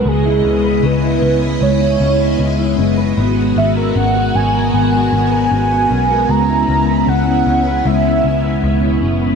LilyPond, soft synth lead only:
\new Staff \with { instrumentName = "Soft synth lead" } { \time 4/4 \key cis \dorian \tempo 4 = 77 gis'4 b'4 cis''4. r8 | r8 e''8 fis''8 gis''8 gis''2 | ais''4 fis''4 e''4. r8 | }